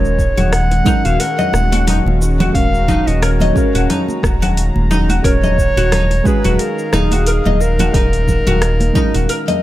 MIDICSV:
0, 0, Header, 1, 7, 480
1, 0, Start_track
1, 0, Key_signature, -6, "minor"
1, 0, Tempo, 674157
1, 1813, Time_signature, 4, 2, 24, 8
1, 6854, End_track
2, 0, Start_track
2, 0, Title_t, "Clarinet"
2, 0, Program_c, 0, 71
2, 0, Note_on_c, 0, 73, 96
2, 374, Note_on_c, 0, 78, 115
2, 385, Note_off_c, 0, 73, 0
2, 749, Note_on_c, 0, 77, 104
2, 759, Note_off_c, 0, 78, 0
2, 853, Note_on_c, 0, 78, 102
2, 863, Note_off_c, 0, 77, 0
2, 1573, Note_off_c, 0, 78, 0
2, 1814, Note_on_c, 0, 77, 115
2, 2189, Note_on_c, 0, 75, 94
2, 2199, Note_off_c, 0, 77, 0
2, 2296, Note_on_c, 0, 73, 83
2, 2306, Note_off_c, 0, 75, 0
2, 3014, Note_off_c, 0, 73, 0
2, 3732, Note_on_c, 0, 73, 124
2, 4461, Note_on_c, 0, 71, 103
2, 4472, Note_off_c, 0, 73, 0
2, 4695, Note_on_c, 0, 70, 105
2, 4706, Note_off_c, 0, 71, 0
2, 4936, Note_on_c, 0, 68, 104
2, 4947, Note_off_c, 0, 70, 0
2, 5419, Note_on_c, 0, 70, 108
2, 5429, Note_off_c, 0, 68, 0
2, 6854, Note_off_c, 0, 70, 0
2, 6854, End_track
3, 0, Start_track
3, 0, Title_t, "Oud"
3, 0, Program_c, 1, 24
3, 266, Note_on_c, 1, 66, 100
3, 367, Note_off_c, 1, 66, 0
3, 612, Note_on_c, 1, 63, 109
3, 740, Note_off_c, 1, 63, 0
3, 748, Note_on_c, 1, 66, 73
3, 843, Note_off_c, 1, 66, 0
3, 854, Note_on_c, 1, 70, 86
3, 981, Note_off_c, 1, 70, 0
3, 987, Note_on_c, 1, 75, 76
3, 1088, Note_off_c, 1, 75, 0
3, 1227, Note_on_c, 1, 66, 104
3, 1328, Note_off_c, 1, 66, 0
3, 1333, Note_on_c, 1, 63, 81
3, 1410, Note_off_c, 1, 63, 0
3, 1710, Note_on_c, 1, 66, 102
3, 1809, Note_off_c, 1, 66, 0
3, 2053, Note_on_c, 1, 63, 99
3, 2181, Note_off_c, 1, 63, 0
3, 2189, Note_on_c, 1, 66, 78
3, 2283, Note_off_c, 1, 66, 0
3, 2295, Note_on_c, 1, 70, 88
3, 2422, Note_off_c, 1, 70, 0
3, 2431, Note_on_c, 1, 75, 78
3, 2529, Note_off_c, 1, 75, 0
3, 2670, Note_on_c, 1, 66, 103
3, 2769, Note_off_c, 1, 66, 0
3, 2775, Note_on_c, 1, 63, 82
3, 2851, Note_off_c, 1, 63, 0
3, 3149, Note_on_c, 1, 66, 101
3, 3248, Note_off_c, 1, 66, 0
3, 3494, Note_on_c, 1, 63, 95
3, 3621, Note_off_c, 1, 63, 0
3, 3628, Note_on_c, 1, 66, 72
3, 3723, Note_off_c, 1, 66, 0
3, 3733, Note_on_c, 1, 70, 84
3, 3861, Note_off_c, 1, 70, 0
3, 3871, Note_on_c, 1, 75, 79
3, 3969, Note_off_c, 1, 75, 0
3, 4111, Note_on_c, 1, 66, 106
3, 4209, Note_off_c, 1, 66, 0
3, 4216, Note_on_c, 1, 63, 87
3, 4291, Note_off_c, 1, 63, 0
3, 4591, Note_on_c, 1, 66, 99
3, 4690, Note_off_c, 1, 66, 0
3, 4937, Note_on_c, 1, 63, 102
3, 5063, Note_off_c, 1, 63, 0
3, 5072, Note_on_c, 1, 66, 76
3, 5165, Note_off_c, 1, 66, 0
3, 5178, Note_on_c, 1, 70, 77
3, 5304, Note_off_c, 1, 70, 0
3, 5314, Note_on_c, 1, 75, 76
3, 5411, Note_off_c, 1, 75, 0
3, 5553, Note_on_c, 1, 66, 104
3, 5651, Note_off_c, 1, 66, 0
3, 5658, Note_on_c, 1, 63, 83
3, 5732, Note_off_c, 1, 63, 0
3, 6032, Note_on_c, 1, 66, 107
3, 6130, Note_off_c, 1, 66, 0
3, 6375, Note_on_c, 1, 63, 106
3, 6502, Note_off_c, 1, 63, 0
3, 6512, Note_on_c, 1, 66, 78
3, 6605, Note_off_c, 1, 66, 0
3, 6617, Note_on_c, 1, 70, 90
3, 6743, Note_off_c, 1, 70, 0
3, 6750, Note_on_c, 1, 75, 78
3, 6849, Note_off_c, 1, 75, 0
3, 6854, End_track
4, 0, Start_track
4, 0, Title_t, "Analog synth pad"
4, 0, Program_c, 2, 89
4, 0, Note_on_c, 2, 51, 75
4, 0, Note_on_c, 2, 56, 90
4, 0, Note_on_c, 2, 61, 80
4, 0, Note_on_c, 2, 68, 83
4, 711, Note_on_c, 2, 66, 94
4, 801, Note_off_c, 2, 68, 0
4, 1589, Note_on_c, 2, 82, 74
4, 4350, Note_on_c, 2, 63, 82
4, 4356, Note_on_c, 2, 77, 95
4, 4482, Note_off_c, 2, 61, 0
4, 4496, Note_off_c, 2, 66, 0
4, 6854, Note_off_c, 2, 51, 0
4, 6854, Note_off_c, 2, 56, 0
4, 6854, Note_off_c, 2, 63, 0
4, 6854, Note_off_c, 2, 77, 0
4, 6854, Note_off_c, 2, 82, 0
4, 6854, End_track
5, 0, Start_track
5, 0, Title_t, "Synth stab"
5, 0, Program_c, 3, 62
5, 0, Note_on_c, 3, 56, 79
5, 0, Note_on_c, 3, 61, 74
5, 0, Note_on_c, 3, 66, 73
5, 0, Note_on_c, 3, 70, 94
5, 42, Control_c, 3, 64, 127
5, 581, Note_off_c, 3, 56, 0
5, 585, Note_off_c, 3, 61, 0
5, 590, Note_off_c, 3, 66, 0
5, 595, Note_off_c, 3, 70, 0
5, 599, Note_on_c, 3, 56, 92
5, 608, Note_on_c, 3, 61, 88
5, 617, Note_on_c, 3, 66, 85
5, 627, Note_on_c, 3, 70, 102
5, 1781, Note_off_c, 3, 56, 0
5, 1785, Note_off_c, 3, 61, 0
5, 1790, Note_off_c, 3, 66, 0
5, 1795, Note_off_c, 3, 70, 0
5, 1797, Note_on_c, 3, 56, 83
5, 1808, Note_on_c, 3, 61, 76
5, 1817, Note_on_c, 3, 66, 80
5, 1827, Note_on_c, 3, 70, 87
5, 2500, Note_off_c, 3, 56, 0
5, 2505, Note_off_c, 3, 61, 0
5, 2510, Note_off_c, 3, 66, 0
5, 2515, Note_off_c, 3, 70, 0
5, 2516, Note_on_c, 3, 56, 91
5, 2526, Note_on_c, 3, 61, 93
5, 2537, Note_on_c, 3, 66, 88
5, 2545, Note_on_c, 3, 70, 110
5, 3699, Note_off_c, 3, 56, 0
5, 3704, Note_off_c, 3, 61, 0
5, 3710, Note_off_c, 3, 66, 0
5, 3714, Note_off_c, 3, 70, 0
5, 3719, Note_on_c, 3, 56, 80
5, 3728, Note_on_c, 3, 61, 78
5, 3738, Note_on_c, 3, 66, 76
5, 3748, Note_on_c, 3, 70, 91
5, 4421, Note_off_c, 3, 56, 0
5, 4425, Note_off_c, 3, 61, 0
5, 4430, Note_off_c, 3, 66, 0
5, 4435, Note_off_c, 3, 70, 0
5, 4440, Note_on_c, 3, 56, 95
5, 4448, Note_on_c, 3, 61, 84
5, 4458, Note_on_c, 3, 66, 89
5, 4468, Note_on_c, 3, 68, 110
5, 5621, Note_off_c, 3, 56, 0
5, 5625, Note_off_c, 3, 61, 0
5, 5630, Note_off_c, 3, 66, 0
5, 5635, Note_off_c, 3, 68, 0
5, 5641, Note_on_c, 3, 56, 82
5, 5650, Note_on_c, 3, 61, 74
5, 5661, Note_on_c, 3, 66, 80
5, 5669, Note_on_c, 3, 70, 88
5, 6342, Note_off_c, 3, 56, 0
5, 6346, Note_off_c, 3, 61, 0
5, 6352, Note_off_c, 3, 66, 0
5, 6356, Note_off_c, 3, 70, 0
5, 6359, Note_on_c, 3, 56, 95
5, 6369, Note_on_c, 3, 61, 92
5, 6378, Note_on_c, 3, 66, 89
5, 6387, Note_on_c, 3, 70, 112
5, 6854, Note_off_c, 3, 56, 0
5, 6854, Note_off_c, 3, 61, 0
5, 6854, Note_off_c, 3, 66, 0
5, 6854, Note_off_c, 3, 70, 0
5, 6854, End_track
6, 0, Start_track
6, 0, Title_t, "Analog synth bass"
6, 0, Program_c, 4, 38
6, 0, Note_on_c, 4, 27, 94
6, 226, Note_off_c, 4, 27, 0
6, 267, Note_on_c, 4, 27, 94
6, 580, Note_off_c, 4, 27, 0
6, 745, Note_on_c, 4, 27, 101
6, 832, Note_off_c, 4, 27, 0
6, 1092, Note_on_c, 4, 27, 79
6, 1425, Note_off_c, 4, 27, 0
6, 1466, Note_on_c, 4, 27, 79
6, 1780, Note_off_c, 4, 27, 0
6, 1813, Note_on_c, 4, 27, 99
6, 2146, Note_off_c, 4, 27, 0
6, 2187, Note_on_c, 4, 27, 98
6, 2500, Note_off_c, 4, 27, 0
6, 2666, Note_on_c, 4, 27, 101
6, 2752, Note_off_c, 4, 27, 0
6, 3012, Note_on_c, 4, 27, 73
6, 3346, Note_off_c, 4, 27, 0
6, 3389, Note_on_c, 4, 27, 75
6, 3701, Note_off_c, 4, 27, 0
6, 3733, Note_on_c, 4, 27, 96
6, 4066, Note_off_c, 4, 27, 0
6, 4107, Note_on_c, 4, 27, 97
6, 4420, Note_off_c, 4, 27, 0
6, 4589, Note_on_c, 4, 27, 100
6, 4673, Note_off_c, 4, 27, 0
6, 4935, Note_on_c, 4, 27, 80
6, 5267, Note_off_c, 4, 27, 0
6, 5308, Note_on_c, 4, 27, 73
6, 5621, Note_off_c, 4, 27, 0
6, 5653, Note_on_c, 4, 27, 106
6, 5986, Note_off_c, 4, 27, 0
6, 6028, Note_on_c, 4, 27, 100
6, 6341, Note_off_c, 4, 27, 0
6, 6508, Note_on_c, 4, 27, 94
6, 6593, Note_off_c, 4, 27, 0
6, 6854, End_track
7, 0, Start_track
7, 0, Title_t, "Drums"
7, 34, Note_on_c, 9, 69, 33
7, 105, Note_off_c, 9, 69, 0
7, 133, Note_on_c, 9, 36, 58
7, 138, Note_on_c, 9, 69, 74
7, 204, Note_off_c, 9, 36, 0
7, 209, Note_off_c, 9, 69, 0
7, 270, Note_on_c, 9, 46, 30
7, 270, Note_on_c, 9, 64, 88
7, 273, Note_on_c, 9, 60, 63
7, 274, Note_on_c, 9, 69, 33
7, 341, Note_off_c, 9, 46, 0
7, 341, Note_off_c, 9, 64, 0
7, 344, Note_off_c, 9, 60, 0
7, 345, Note_off_c, 9, 69, 0
7, 374, Note_on_c, 9, 37, 73
7, 374, Note_on_c, 9, 46, 61
7, 378, Note_on_c, 9, 69, 47
7, 445, Note_off_c, 9, 37, 0
7, 445, Note_off_c, 9, 46, 0
7, 450, Note_off_c, 9, 69, 0
7, 507, Note_on_c, 9, 60, 51
7, 509, Note_on_c, 9, 46, 26
7, 579, Note_off_c, 9, 60, 0
7, 580, Note_off_c, 9, 46, 0
7, 609, Note_on_c, 9, 60, 56
7, 613, Note_on_c, 9, 36, 102
7, 615, Note_on_c, 9, 64, 83
7, 620, Note_on_c, 9, 69, 78
7, 680, Note_off_c, 9, 60, 0
7, 684, Note_off_c, 9, 36, 0
7, 687, Note_off_c, 9, 64, 0
7, 691, Note_off_c, 9, 69, 0
7, 748, Note_on_c, 9, 46, 43
7, 752, Note_on_c, 9, 69, 33
7, 819, Note_off_c, 9, 46, 0
7, 823, Note_off_c, 9, 69, 0
7, 854, Note_on_c, 9, 46, 62
7, 858, Note_on_c, 9, 69, 47
7, 925, Note_off_c, 9, 46, 0
7, 929, Note_off_c, 9, 69, 0
7, 989, Note_on_c, 9, 64, 74
7, 993, Note_on_c, 9, 69, 30
7, 1060, Note_off_c, 9, 64, 0
7, 1064, Note_off_c, 9, 69, 0
7, 1091, Note_on_c, 9, 63, 71
7, 1095, Note_on_c, 9, 37, 70
7, 1099, Note_on_c, 9, 69, 80
7, 1162, Note_off_c, 9, 63, 0
7, 1166, Note_off_c, 9, 37, 0
7, 1170, Note_off_c, 9, 69, 0
7, 1227, Note_on_c, 9, 63, 68
7, 1230, Note_on_c, 9, 46, 44
7, 1234, Note_on_c, 9, 69, 33
7, 1299, Note_off_c, 9, 63, 0
7, 1301, Note_off_c, 9, 46, 0
7, 1305, Note_off_c, 9, 69, 0
7, 1336, Note_on_c, 9, 46, 69
7, 1336, Note_on_c, 9, 64, 80
7, 1340, Note_on_c, 9, 69, 46
7, 1407, Note_off_c, 9, 46, 0
7, 1407, Note_off_c, 9, 64, 0
7, 1411, Note_off_c, 9, 69, 0
7, 1469, Note_on_c, 9, 63, 61
7, 1478, Note_on_c, 9, 60, 51
7, 1540, Note_off_c, 9, 63, 0
7, 1549, Note_off_c, 9, 60, 0
7, 1579, Note_on_c, 9, 60, 53
7, 1580, Note_on_c, 9, 69, 75
7, 1650, Note_off_c, 9, 60, 0
7, 1651, Note_off_c, 9, 69, 0
7, 1710, Note_on_c, 9, 64, 97
7, 1711, Note_off_c, 9, 64, 0
7, 1711, Note_on_c, 9, 46, 28
7, 1711, Note_on_c, 9, 64, 80
7, 1712, Note_on_c, 9, 63, 70
7, 1715, Note_on_c, 9, 69, 33
7, 1782, Note_off_c, 9, 46, 0
7, 1782, Note_off_c, 9, 64, 0
7, 1783, Note_off_c, 9, 63, 0
7, 1786, Note_off_c, 9, 69, 0
7, 1813, Note_on_c, 9, 36, 115
7, 1816, Note_on_c, 9, 46, 67
7, 1820, Note_on_c, 9, 69, 44
7, 1885, Note_off_c, 9, 36, 0
7, 1887, Note_off_c, 9, 46, 0
7, 1891, Note_off_c, 9, 69, 0
7, 1954, Note_on_c, 9, 69, 34
7, 2025, Note_off_c, 9, 69, 0
7, 2053, Note_on_c, 9, 64, 76
7, 2054, Note_on_c, 9, 36, 55
7, 2056, Note_off_c, 9, 64, 0
7, 2056, Note_on_c, 9, 64, 81
7, 2060, Note_on_c, 9, 69, 70
7, 2125, Note_off_c, 9, 36, 0
7, 2127, Note_off_c, 9, 64, 0
7, 2131, Note_off_c, 9, 69, 0
7, 2189, Note_on_c, 9, 60, 58
7, 2192, Note_on_c, 9, 46, 33
7, 2196, Note_on_c, 9, 69, 33
7, 2260, Note_off_c, 9, 60, 0
7, 2263, Note_off_c, 9, 46, 0
7, 2267, Note_off_c, 9, 69, 0
7, 2297, Note_on_c, 9, 37, 76
7, 2297, Note_on_c, 9, 46, 65
7, 2301, Note_on_c, 9, 69, 44
7, 2368, Note_off_c, 9, 37, 0
7, 2368, Note_off_c, 9, 46, 0
7, 2372, Note_off_c, 9, 69, 0
7, 2422, Note_on_c, 9, 63, 75
7, 2426, Note_on_c, 9, 60, 59
7, 2433, Note_on_c, 9, 46, 30
7, 2433, Note_on_c, 9, 64, 80
7, 2493, Note_off_c, 9, 63, 0
7, 2498, Note_off_c, 9, 60, 0
7, 2504, Note_off_c, 9, 46, 0
7, 2504, Note_off_c, 9, 64, 0
7, 2532, Note_on_c, 9, 60, 55
7, 2534, Note_on_c, 9, 36, 99
7, 2540, Note_on_c, 9, 69, 72
7, 2604, Note_off_c, 9, 60, 0
7, 2605, Note_off_c, 9, 36, 0
7, 2611, Note_off_c, 9, 69, 0
7, 2670, Note_on_c, 9, 46, 44
7, 2675, Note_on_c, 9, 69, 33
7, 2742, Note_off_c, 9, 46, 0
7, 2746, Note_off_c, 9, 69, 0
7, 2777, Note_on_c, 9, 46, 65
7, 2777, Note_on_c, 9, 64, 83
7, 2781, Note_on_c, 9, 69, 43
7, 2848, Note_off_c, 9, 46, 0
7, 2848, Note_off_c, 9, 64, 0
7, 2852, Note_off_c, 9, 69, 0
7, 2908, Note_on_c, 9, 63, 58
7, 2916, Note_on_c, 9, 69, 29
7, 2979, Note_off_c, 9, 63, 0
7, 2987, Note_off_c, 9, 69, 0
7, 3013, Note_on_c, 9, 36, 97
7, 3017, Note_on_c, 9, 37, 69
7, 3017, Note_on_c, 9, 63, 59
7, 3021, Note_on_c, 9, 69, 76
7, 3084, Note_off_c, 9, 36, 0
7, 3088, Note_off_c, 9, 37, 0
7, 3088, Note_off_c, 9, 63, 0
7, 3093, Note_off_c, 9, 69, 0
7, 3153, Note_on_c, 9, 46, 46
7, 3153, Note_on_c, 9, 64, 83
7, 3157, Note_on_c, 9, 69, 33
7, 3224, Note_off_c, 9, 46, 0
7, 3224, Note_off_c, 9, 64, 0
7, 3228, Note_off_c, 9, 69, 0
7, 3256, Note_on_c, 9, 46, 70
7, 3261, Note_on_c, 9, 69, 43
7, 3328, Note_off_c, 9, 46, 0
7, 3332, Note_off_c, 9, 69, 0
7, 3387, Note_on_c, 9, 63, 69
7, 3458, Note_off_c, 9, 63, 0
7, 3496, Note_on_c, 9, 64, 81
7, 3501, Note_on_c, 9, 69, 70
7, 3568, Note_off_c, 9, 64, 0
7, 3572, Note_off_c, 9, 69, 0
7, 3625, Note_on_c, 9, 63, 64
7, 3630, Note_on_c, 9, 46, 31
7, 3634, Note_on_c, 9, 69, 31
7, 3697, Note_off_c, 9, 63, 0
7, 3701, Note_off_c, 9, 46, 0
7, 3705, Note_off_c, 9, 69, 0
7, 3733, Note_on_c, 9, 36, 111
7, 3737, Note_on_c, 9, 46, 70
7, 3741, Note_on_c, 9, 69, 43
7, 3804, Note_off_c, 9, 36, 0
7, 3808, Note_off_c, 9, 46, 0
7, 3813, Note_off_c, 9, 69, 0
7, 3869, Note_on_c, 9, 64, 88
7, 3873, Note_on_c, 9, 69, 32
7, 3940, Note_off_c, 9, 64, 0
7, 3945, Note_off_c, 9, 69, 0
7, 3973, Note_on_c, 9, 36, 56
7, 3981, Note_on_c, 9, 69, 76
7, 4044, Note_off_c, 9, 36, 0
7, 4052, Note_off_c, 9, 69, 0
7, 4112, Note_on_c, 9, 46, 34
7, 4112, Note_on_c, 9, 60, 60
7, 4116, Note_on_c, 9, 69, 34
7, 4183, Note_off_c, 9, 46, 0
7, 4184, Note_off_c, 9, 60, 0
7, 4187, Note_off_c, 9, 69, 0
7, 4216, Note_on_c, 9, 37, 75
7, 4216, Note_on_c, 9, 46, 66
7, 4216, Note_on_c, 9, 64, 80
7, 4220, Note_on_c, 9, 69, 44
7, 4287, Note_off_c, 9, 37, 0
7, 4287, Note_off_c, 9, 46, 0
7, 4287, Note_off_c, 9, 64, 0
7, 4292, Note_off_c, 9, 69, 0
7, 4348, Note_on_c, 9, 60, 52
7, 4350, Note_on_c, 9, 46, 30
7, 4419, Note_off_c, 9, 60, 0
7, 4422, Note_off_c, 9, 46, 0
7, 4453, Note_on_c, 9, 36, 99
7, 4453, Note_on_c, 9, 60, 62
7, 4458, Note_on_c, 9, 69, 76
7, 4524, Note_off_c, 9, 36, 0
7, 4524, Note_off_c, 9, 60, 0
7, 4529, Note_off_c, 9, 69, 0
7, 4589, Note_on_c, 9, 46, 47
7, 4589, Note_on_c, 9, 64, 84
7, 4593, Note_on_c, 9, 69, 32
7, 4660, Note_off_c, 9, 46, 0
7, 4660, Note_off_c, 9, 64, 0
7, 4664, Note_off_c, 9, 69, 0
7, 4694, Note_on_c, 9, 46, 70
7, 4698, Note_on_c, 9, 69, 43
7, 4765, Note_off_c, 9, 46, 0
7, 4770, Note_off_c, 9, 69, 0
7, 4832, Note_on_c, 9, 69, 29
7, 4903, Note_off_c, 9, 69, 0
7, 4932, Note_on_c, 9, 37, 72
7, 4932, Note_on_c, 9, 64, 88
7, 4933, Note_on_c, 9, 63, 58
7, 4937, Note_on_c, 9, 69, 73
7, 5004, Note_off_c, 9, 37, 0
7, 5004, Note_off_c, 9, 63, 0
7, 5004, Note_off_c, 9, 64, 0
7, 5008, Note_off_c, 9, 69, 0
7, 5063, Note_on_c, 9, 63, 71
7, 5067, Note_on_c, 9, 46, 45
7, 5072, Note_on_c, 9, 69, 33
7, 5135, Note_off_c, 9, 63, 0
7, 5139, Note_off_c, 9, 46, 0
7, 5143, Note_off_c, 9, 69, 0
7, 5173, Note_on_c, 9, 46, 74
7, 5177, Note_on_c, 9, 69, 44
7, 5244, Note_off_c, 9, 46, 0
7, 5248, Note_off_c, 9, 69, 0
7, 5308, Note_on_c, 9, 64, 83
7, 5309, Note_on_c, 9, 63, 72
7, 5313, Note_on_c, 9, 60, 54
7, 5380, Note_off_c, 9, 64, 0
7, 5381, Note_off_c, 9, 63, 0
7, 5384, Note_off_c, 9, 60, 0
7, 5415, Note_on_c, 9, 60, 57
7, 5418, Note_on_c, 9, 69, 70
7, 5486, Note_off_c, 9, 60, 0
7, 5490, Note_off_c, 9, 69, 0
7, 5545, Note_on_c, 9, 63, 63
7, 5549, Note_on_c, 9, 46, 31
7, 5551, Note_on_c, 9, 64, 92
7, 5553, Note_on_c, 9, 69, 32
7, 5616, Note_off_c, 9, 63, 0
7, 5620, Note_off_c, 9, 46, 0
7, 5622, Note_off_c, 9, 64, 0
7, 5624, Note_off_c, 9, 69, 0
7, 5654, Note_on_c, 9, 36, 121
7, 5655, Note_on_c, 9, 46, 73
7, 5655, Note_on_c, 9, 64, 83
7, 5659, Note_on_c, 9, 69, 43
7, 5725, Note_off_c, 9, 36, 0
7, 5726, Note_off_c, 9, 46, 0
7, 5726, Note_off_c, 9, 64, 0
7, 5730, Note_off_c, 9, 69, 0
7, 5789, Note_on_c, 9, 46, 35
7, 5793, Note_on_c, 9, 69, 31
7, 5860, Note_off_c, 9, 46, 0
7, 5865, Note_off_c, 9, 69, 0
7, 5894, Note_on_c, 9, 36, 55
7, 5899, Note_on_c, 9, 69, 74
7, 5900, Note_on_c, 9, 64, 90
7, 5965, Note_off_c, 9, 36, 0
7, 5970, Note_off_c, 9, 69, 0
7, 5971, Note_off_c, 9, 64, 0
7, 6029, Note_on_c, 9, 46, 35
7, 6029, Note_on_c, 9, 64, 84
7, 6030, Note_on_c, 9, 60, 71
7, 6033, Note_on_c, 9, 69, 34
7, 6100, Note_off_c, 9, 46, 0
7, 6100, Note_off_c, 9, 64, 0
7, 6102, Note_off_c, 9, 60, 0
7, 6104, Note_off_c, 9, 69, 0
7, 6135, Note_on_c, 9, 37, 82
7, 6135, Note_on_c, 9, 46, 75
7, 6139, Note_on_c, 9, 69, 42
7, 6206, Note_off_c, 9, 37, 0
7, 6206, Note_off_c, 9, 46, 0
7, 6211, Note_off_c, 9, 69, 0
7, 6266, Note_on_c, 9, 60, 55
7, 6269, Note_on_c, 9, 63, 73
7, 6271, Note_on_c, 9, 46, 33
7, 6275, Note_on_c, 9, 69, 29
7, 6337, Note_off_c, 9, 60, 0
7, 6340, Note_off_c, 9, 63, 0
7, 6342, Note_off_c, 9, 46, 0
7, 6346, Note_off_c, 9, 69, 0
7, 6374, Note_on_c, 9, 36, 102
7, 6375, Note_on_c, 9, 64, 82
7, 6377, Note_on_c, 9, 60, 53
7, 6379, Note_on_c, 9, 69, 72
7, 6446, Note_off_c, 9, 36, 0
7, 6446, Note_off_c, 9, 64, 0
7, 6448, Note_off_c, 9, 60, 0
7, 6450, Note_off_c, 9, 69, 0
7, 6511, Note_on_c, 9, 46, 47
7, 6515, Note_on_c, 9, 69, 32
7, 6582, Note_off_c, 9, 46, 0
7, 6586, Note_off_c, 9, 69, 0
7, 6615, Note_on_c, 9, 60, 42
7, 6616, Note_on_c, 9, 46, 69
7, 6620, Note_on_c, 9, 69, 45
7, 6686, Note_off_c, 9, 60, 0
7, 6687, Note_off_c, 9, 46, 0
7, 6691, Note_off_c, 9, 69, 0
7, 6751, Note_on_c, 9, 46, 32
7, 6751, Note_on_c, 9, 63, 59
7, 6751, Note_on_c, 9, 64, 77
7, 6756, Note_on_c, 9, 69, 28
7, 6823, Note_off_c, 9, 46, 0
7, 6823, Note_off_c, 9, 63, 0
7, 6823, Note_off_c, 9, 64, 0
7, 6827, Note_off_c, 9, 69, 0
7, 6854, End_track
0, 0, End_of_file